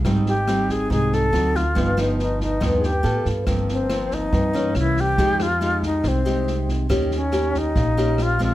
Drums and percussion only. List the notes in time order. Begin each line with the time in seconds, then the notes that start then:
0.05 kick, cross-stick, snare
0.26 snare
0.48 cross-stick, snare
0.69 kick, snare
0.91 kick, snare
1.13 snare
1.34 cross-stick, snare
1.55 kick, snare
1.76 kick, snare
1.98 cross-stick, snare
2.19 snare
2.40 kick, snare
2.62 kick, cross-stick, snare
2.83 snare
3.04 snare
3.25 kick, snare
3.47 kick, cross-stick, snare
3.69 snare
3.90 cross-stick, snare
4.11 kick, snare
4.33 kick, snare
4.54 snare
4.75 cross-stick, snare
4.97 kick, snare
5.18 kick, snare
5.40 cross-stick, snare
5.61 snare
5.83 kick, snare
6.04 kick, cross-stick, snare
6.26 snare
6.47 snare
6.68 kick, snare
6.90 kick, cross-stick, snare
7.11 snare
7.32 cross-stick, snare
7.54 kick, snare
7.76 kick, snare
7.97 snare
8.18 cross-stick, snare
8.40 kick, snare